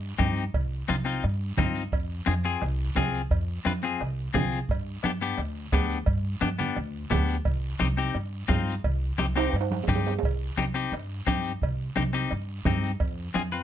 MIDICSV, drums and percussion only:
0, 0, Header, 1, 3, 480
1, 0, Start_track
1, 0, Key_signature, -3, "minor"
1, 0, Tempo, 346220
1, 750, Time_signature, 4, 2, 24, 8
1, 18898, End_track
2, 0, Start_track
2, 0, Title_t, "Two-headed folk drums"
2, 262, Note_on_c, 9, 37, 72
2, 271, Note_on_c, 9, 36, 75
2, 401, Note_off_c, 9, 37, 0
2, 410, Note_off_c, 9, 36, 0
2, 749, Note_on_c, 9, 36, 78
2, 887, Note_off_c, 9, 36, 0
2, 1231, Note_on_c, 9, 37, 76
2, 1369, Note_off_c, 9, 37, 0
2, 2189, Note_on_c, 9, 36, 72
2, 2193, Note_on_c, 9, 37, 73
2, 2328, Note_off_c, 9, 36, 0
2, 2332, Note_off_c, 9, 37, 0
2, 2665, Note_on_c, 9, 36, 82
2, 2804, Note_off_c, 9, 36, 0
2, 3153, Note_on_c, 9, 37, 80
2, 3292, Note_off_c, 9, 37, 0
2, 3626, Note_on_c, 9, 37, 68
2, 3764, Note_off_c, 9, 37, 0
2, 4106, Note_on_c, 9, 36, 74
2, 4110, Note_on_c, 9, 37, 77
2, 4245, Note_off_c, 9, 36, 0
2, 4248, Note_off_c, 9, 37, 0
2, 4586, Note_on_c, 9, 36, 81
2, 4724, Note_off_c, 9, 36, 0
2, 5064, Note_on_c, 9, 37, 77
2, 5203, Note_off_c, 9, 37, 0
2, 5553, Note_on_c, 9, 37, 66
2, 5692, Note_off_c, 9, 37, 0
2, 6024, Note_on_c, 9, 36, 75
2, 6029, Note_on_c, 9, 37, 78
2, 6163, Note_off_c, 9, 36, 0
2, 6168, Note_off_c, 9, 37, 0
2, 6504, Note_on_c, 9, 36, 78
2, 6643, Note_off_c, 9, 36, 0
2, 6973, Note_on_c, 9, 37, 79
2, 7112, Note_off_c, 9, 37, 0
2, 7453, Note_on_c, 9, 37, 67
2, 7592, Note_off_c, 9, 37, 0
2, 7935, Note_on_c, 9, 36, 77
2, 7935, Note_on_c, 9, 37, 75
2, 8073, Note_off_c, 9, 36, 0
2, 8073, Note_off_c, 9, 37, 0
2, 8415, Note_on_c, 9, 36, 82
2, 8554, Note_off_c, 9, 36, 0
2, 8896, Note_on_c, 9, 37, 81
2, 9034, Note_off_c, 9, 37, 0
2, 9852, Note_on_c, 9, 36, 74
2, 9852, Note_on_c, 9, 37, 75
2, 9990, Note_off_c, 9, 36, 0
2, 9991, Note_off_c, 9, 37, 0
2, 10333, Note_on_c, 9, 36, 85
2, 10471, Note_off_c, 9, 36, 0
2, 10805, Note_on_c, 9, 37, 80
2, 10944, Note_off_c, 9, 37, 0
2, 11767, Note_on_c, 9, 37, 76
2, 11775, Note_on_c, 9, 36, 76
2, 11906, Note_off_c, 9, 37, 0
2, 11913, Note_off_c, 9, 36, 0
2, 12258, Note_on_c, 9, 36, 80
2, 12397, Note_off_c, 9, 36, 0
2, 12742, Note_on_c, 9, 37, 82
2, 12880, Note_off_c, 9, 37, 0
2, 13699, Note_on_c, 9, 37, 73
2, 13701, Note_on_c, 9, 36, 80
2, 13838, Note_off_c, 9, 37, 0
2, 13839, Note_off_c, 9, 36, 0
2, 14181, Note_on_c, 9, 36, 78
2, 14319, Note_off_c, 9, 36, 0
2, 14661, Note_on_c, 9, 37, 74
2, 14800, Note_off_c, 9, 37, 0
2, 15157, Note_on_c, 9, 37, 68
2, 15296, Note_off_c, 9, 37, 0
2, 15627, Note_on_c, 9, 36, 72
2, 15627, Note_on_c, 9, 37, 71
2, 15766, Note_off_c, 9, 36, 0
2, 15766, Note_off_c, 9, 37, 0
2, 16107, Note_on_c, 9, 36, 83
2, 16246, Note_off_c, 9, 36, 0
2, 16590, Note_on_c, 9, 37, 81
2, 16729, Note_off_c, 9, 37, 0
2, 17543, Note_on_c, 9, 37, 80
2, 17545, Note_on_c, 9, 36, 79
2, 17681, Note_off_c, 9, 37, 0
2, 17683, Note_off_c, 9, 36, 0
2, 18026, Note_on_c, 9, 36, 84
2, 18164, Note_off_c, 9, 36, 0
2, 18511, Note_on_c, 9, 37, 79
2, 18649, Note_off_c, 9, 37, 0
2, 18898, End_track
3, 0, Start_track
3, 0, Title_t, "Drums"
3, 264, Note_on_c, 9, 73, 63
3, 283, Note_on_c, 9, 56, 60
3, 283, Note_on_c, 9, 63, 79
3, 402, Note_off_c, 9, 73, 0
3, 421, Note_off_c, 9, 56, 0
3, 422, Note_off_c, 9, 63, 0
3, 505, Note_on_c, 9, 73, 65
3, 643, Note_off_c, 9, 73, 0
3, 748, Note_on_c, 9, 74, 64
3, 754, Note_on_c, 9, 56, 102
3, 887, Note_off_c, 9, 74, 0
3, 892, Note_off_c, 9, 56, 0
3, 1234, Note_on_c, 9, 73, 71
3, 1242, Note_on_c, 9, 56, 66
3, 1244, Note_on_c, 9, 63, 80
3, 1372, Note_off_c, 9, 73, 0
3, 1381, Note_off_c, 9, 56, 0
3, 1383, Note_off_c, 9, 63, 0
3, 1472, Note_on_c, 9, 73, 70
3, 1611, Note_off_c, 9, 73, 0
3, 1712, Note_on_c, 9, 74, 72
3, 1717, Note_on_c, 9, 56, 79
3, 1851, Note_off_c, 9, 74, 0
3, 1856, Note_off_c, 9, 56, 0
3, 2182, Note_on_c, 9, 63, 82
3, 2182, Note_on_c, 9, 64, 84
3, 2185, Note_on_c, 9, 73, 64
3, 2205, Note_on_c, 9, 56, 62
3, 2321, Note_off_c, 9, 63, 0
3, 2321, Note_off_c, 9, 64, 0
3, 2324, Note_off_c, 9, 73, 0
3, 2343, Note_off_c, 9, 56, 0
3, 2426, Note_on_c, 9, 73, 71
3, 2564, Note_off_c, 9, 73, 0
3, 2666, Note_on_c, 9, 74, 64
3, 2676, Note_on_c, 9, 56, 108
3, 2805, Note_off_c, 9, 74, 0
3, 2814, Note_off_c, 9, 56, 0
3, 3141, Note_on_c, 9, 73, 68
3, 3145, Note_on_c, 9, 63, 79
3, 3154, Note_on_c, 9, 56, 62
3, 3279, Note_off_c, 9, 73, 0
3, 3283, Note_off_c, 9, 63, 0
3, 3293, Note_off_c, 9, 56, 0
3, 3380, Note_on_c, 9, 73, 72
3, 3519, Note_off_c, 9, 73, 0
3, 3613, Note_on_c, 9, 74, 73
3, 3628, Note_on_c, 9, 56, 82
3, 3751, Note_off_c, 9, 74, 0
3, 3766, Note_off_c, 9, 56, 0
3, 4096, Note_on_c, 9, 63, 88
3, 4107, Note_on_c, 9, 73, 62
3, 4121, Note_on_c, 9, 56, 61
3, 4121, Note_on_c, 9, 66, 63
3, 4235, Note_off_c, 9, 63, 0
3, 4246, Note_off_c, 9, 73, 0
3, 4260, Note_off_c, 9, 56, 0
3, 4260, Note_off_c, 9, 66, 0
3, 4351, Note_on_c, 9, 73, 69
3, 4489, Note_off_c, 9, 73, 0
3, 4586, Note_on_c, 9, 74, 67
3, 4592, Note_on_c, 9, 56, 105
3, 4725, Note_off_c, 9, 74, 0
3, 4731, Note_off_c, 9, 56, 0
3, 5061, Note_on_c, 9, 73, 71
3, 5076, Note_on_c, 9, 63, 78
3, 5082, Note_on_c, 9, 56, 65
3, 5200, Note_off_c, 9, 73, 0
3, 5215, Note_off_c, 9, 63, 0
3, 5220, Note_off_c, 9, 56, 0
3, 5294, Note_on_c, 9, 73, 69
3, 5432, Note_off_c, 9, 73, 0
3, 5541, Note_on_c, 9, 74, 71
3, 5559, Note_on_c, 9, 56, 77
3, 5680, Note_off_c, 9, 74, 0
3, 5698, Note_off_c, 9, 56, 0
3, 6021, Note_on_c, 9, 73, 67
3, 6037, Note_on_c, 9, 56, 68
3, 6037, Note_on_c, 9, 66, 65
3, 6039, Note_on_c, 9, 63, 85
3, 6039, Note_on_c, 9, 64, 84
3, 6159, Note_off_c, 9, 73, 0
3, 6176, Note_off_c, 9, 56, 0
3, 6176, Note_off_c, 9, 66, 0
3, 6178, Note_off_c, 9, 63, 0
3, 6178, Note_off_c, 9, 64, 0
3, 6262, Note_on_c, 9, 73, 68
3, 6401, Note_off_c, 9, 73, 0
3, 6502, Note_on_c, 9, 74, 65
3, 6530, Note_on_c, 9, 56, 102
3, 6641, Note_off_c, 9, 74, 0
3, 6669, Note_off_c, 9, 56, 0
3, 6977, Note_on_c, 9, 73, 66
3, 6989, Note_on_c, 9, 63, 78
3, 6995, Note_on_c, 9, 56, 59
3, 7115, Note_off_c, 9, 73, 0
3, 7127, Note_off_c, 9, 63, 0
3, 7134, Note_off_c, 9, 56, 0
3, 7225, Note_on_c, 9, 73, 69
3, 7364, Note_off_c, 9, 73, 0
3, 7454, Note_on_c, 9, 74, 69
3, 7465, Note_on_c, 9, 56, 77
3, 7592, Note_off_c, 9, 74, 0
3, 7604, Note_off_c, 9, 56, 0
3, 7930, Note_on_c, 9, 73, 66
3, 7941, Note_on_c, 9, 63, 82
3, 7948, Note_on_c, 9, 56, 68
3, 7948, Note_on_c, 9, 66, 68
3, 8068, Note_off_c, 9, 73, 0
3, 8080, Note_off_c, 9, 63, 0
3, 8086, Note_off_c, 9, 56, 0
3, 8086, Note_off_c, 9, 66, 0
3, 8176, Note_on_c, 9, 73, 66
3, 8315, Note_off_c, 9, 73, 0
3, 8406, Note_on_c, 9, 56, 101
3, 8419, Note_on_c, 9, 74, 70
3, 8544, Note_off_c, 9, 56, 0
3, 8557, Note_off_c, 9, 74, 0
3, 8898, Note_on_c, 9, 56, 63
3, 8904, Note_on_c, 9, 73, 69
3, 8907, Note_on_c, 9, 63, 78
3, 9036, Note_off_c, 9, 56, 0
3, 9042, Note_off_c, 9, 73, 0
3, 9046, Note_off_c, 9, 63, 0
3, 9132, Note_on_c, 9, 73, 70
3, 9154, Note_on_c, 9, 64, 66
3, 9271, Note_off_c, 9, 73, 0
3, 9293, Note_off_c, 9, 64, 0
3, 9377, Note_on_c, 9, 56, 76
3, 9382, Note_on_c, 9, 74, 71
3, 9516, Note_off_c, 9, 56, 0
3, 9520, Note_off_c, 9, 74, 0
3, 9852, Note_on_c, 9, 56, 69
3, 9852, Note_on_c, 9, 66, 69
3, 9868, Note_on_c, 9, 73, 67
3, 9869, Note_on_c, 9, 63, 84
3, 9869, Note_on_c, 9, 64, 86
3, 9991, Note_off_c, 9, 56, 0
3, 9991, Note_off_c, 9, 66, 0
3, 10006, Note_off_c, 9, 73, 0
3, 10008, Note_off_c, 9, 63, 0
3, 10008, Note_off_c, 9, 64, 0
3, 10096, Note_on_c, 9, 73, 69
3, 10235, Note_off_c, 9, 73, 0
3, 10332, Note_on_c, 9, 56, 100
3, 10341, Note_on_c, 9, 74, 69
3, 10470, Note_off_c, 9, 56, 0
3, 10480, Note_off_c, 9, 74, 0
3, 10813, Note_on_c, 9, 56, 64
3, 10821, Note_on_c, 9, 73, 69
3, 10827, Note_on_c, 9, 63, 75
3, 10951, Note_off_c, 9, 56, 0
3, 10959, Note_off_c, 9, 73, 0
3, 10966, Note_off_c, 9, 63, 0
3, 11061, Note_on_c, 9, 73, 65
3, 11199, Note_off_c, 9, 73, 0
3, 11293, Note_on_c, 9, 56, 80
3, 11302, Note_on_c, 9, 74, 73
3, 11431, Note_off_c, 9, 56, 0
3, 11441, Note_off_c, 9, 74, 0
3, 11776, Note_on_c, 9, 56, 65
3, 11776, Note_on_c, 9, 66, 70
3, 11783, Note_on_c, 9, 63, 84
3, 11787, Note_on_c, 9, 73, 68
3, 11915, Note_off_c, 9, 56, 0
3, 11915, Note_off_c, 9, 66, 0
3, 11922, Note_off_c, 9, 63, 0
3, 11926, Note_off_c, 9, 73, 0
3, 12026, Note_on_c, 9, 73, 68
3, 12165, Note_off_c, 9, 73, 0
3, 12261, Note_on_c, 9, 56, 105
3, 12266, Note_on_c, 9, 74, 72
3, 12400, Note_off_c, 9, 56, 0
3, 12404, Note_off_c, 9, 74, 0
3, 12735, Note_on_c, 9, 63, 83
3, 12742, Note_on_c, 9, 56, 63
3, 12750, Note_on_c, 9, 73, 70
3, 12873, Note_off_c, 9, 63, 0
3, 12881, Note_off_c, 9, 56, 0
3, 12889, Note_off_c, 9, 73, 0
3, 12994, Note_on_c, 9, 73, 68
3, 12997, Note_on_c, 9, 65, 98
3, 13133, Note_off_c, 9, 73, 0
3, 13136, Note_off_c, 9, 65, 0
3, 13164, Note_on_c, 9, 65, 73
3, 13230, Note_on_c, 9, 74, 74
3, 13254, Note_on_c, 9, 56, 80
3, 13303, Note_off_c, 9, 65, 0
3, 13320, Note_on_c, 9, 65, 91
3, 13369, Note_off_c, 9, 74, 0
3, 13393, Note_off_c, 9, 56, 0
3, 13458, Note_off_c, 9, 65, 0
3, 13458, Note_on_c, 9, 63, 71
3, 13471, Note_on_c, 9, 65, 82
3, 13597, Note_off_c, 9, 63, 0
3, 13609, Note_off_c, 9, 65, 0
3, 13635, Note_on_c, 9, 66, 70
3, 13696, Note_on_c, 9, 63, 82
3, 13696, Note_on_c, 9, 64, 82
3, 13711, Note_on_c, 9, 73, 65
3, 13716, Note_on_c, 9, 56, 60
3, 13773, Note_off_c, 9, 66, 0
3, 13801, Note_on_c, 9, 66, 68
3, 13835, Note_off_c, 9, 63, 0
3, 13835, Note_off_c, 9, 64, 0
3, 13849, Note_off_c, 9, 73, 0
3, 13854, Note_off_c, 9, 56, 0
3, 13940, Note_off_c, 9, 66, 0
3, 13948, Note_on_c, 9, 73, 67
3, 13956, Note_on_c, 9, 66, 95
3, 14087, Note_off_c, 9, 73, 0
3, 14094, Note_off_c, 9, 66, 0
3, 14121, Note_on_c, 9, 66, 93
3, 14186, Note_on_c, 9, 74, 67
3, 14213, Note_on_c, 9, 56, 99
3, 14260, Note_off_c, 9, 66, 0
3, 14324, Note_off_c, 9, 74, 0
3, 14352, Note_off_c, 9, 56, 0
3, 14663, Note_on_c, 9, 73, 70
3, 14665, Note_on_c, 9, 63, 79
3, 14674, Note_on_c, 9, 56, 64
3, 14802, Note_off_c, 9, 73, 0
3, 14804, Note_off_c, 9, 63, 0
3, 14813, Note_off_c, 9, 56, 0
3, 14893, Note_on_c, 9, 73, 67
3, 15032, Note_off_c, 9, 73, 0
3, 15138, Note_on_c, 9, 74, 71
3, 15157, Note_on_c, 9, 56, 79
3, 15277, Note_off_c, 9, 74, 0
3, 15295, Note_off_c, 9, 56, 0
3, 15624, Note_on_c, 9, 73, 66
3, 15627, Note_on_c, 9, 63, 83
3, 15633, Note_on_c, 9, 56, 62
3, 15762, Note_off_c, 9, 73, 0
3, 15765, Note_off_c, 9, 63, 0
3, 15772, Note_off_c, 9, 56, 0
3, 15857, Note_on_c, 9, 73, 70
3, 15996, Note_off_c, 9, 73, 0
3, 16106, Note_on_c, 9, 74, 66
3, 16127, Note_on_c, 9, 56, 99
3, 16245, Note_off_c, 9, 74, 0
3, 16266, Note_off_c, 9, 56, 0
3, 16578, Note_on_c, 9, 73, 69
3, 16587, Note_on_c, 9, 63, 81
3, 16598, Note_on_c, 9, 56, 60
3, 16717, Note_off_c, 9, 73, 0
3, 16726, Note_off_c, 9, 63, 0
3, 16737, Note_off_c, 9, 56, 0
3, 16821, Note_on_c, 9, 73, 67
3, 16960, Note_off_c, 9, 73, 0
3, 17062, Note_on_c, 9, 56, 85
3, 17070, Note_on_c, 9, 74, 72
3, 17201, Note_off_c, 9, 56, 0
3, 17208, Note_off_c, 9, 74, 0
3, 17542, Note_on_c, 9, 63, 88
3, 17542, Note_on_c, 9, 64, 88
3, 17551, Note_on_c, 9, 73, 67
3, 17565, Note_on_c, 9, 56, 69
3, 17565, Note_on_c, 9, 66, 65
3, 17680, Note_off_c, 9, 63, 0
3, 17680, Note_off_c, 9, 64, 0
3, 17690, Note_off_c, 9, 73, 0
3, 17703, Note_off_c, 9, 56, 0
3, 17703, Note_off_c, 9, 66, 0
3, 17791, Note_on_c, 9, 73, 68
3, 17930, Note_off_c, 9, 73, 0
3, 18024, Note_on_c, 9, 56, 103
3, 18025, Note_on_c, 9, 74, 65
3, 18162, Note_off_c, 9, 56, 0
3, 18163, Note_off_c, 9, 74, 0
3, 18505, Note_on_c, 9, 73, 69
3, 18508, Note_on_c, 9, 63, 79
3, 18518, Note_on_c, 9, 56, 63
3, 18644, Note_off_c, 9, 73, 0
3, 18647, Note_off_c, 9, 63, 0
3, 18656, Note_off_c, 9, 56, 0
3, 18736, Note_on_c, 9, 73, 70
3, 18874, Note_off_c, 9, 73, 0
3, 18898, End_track
0, 0, End_of_file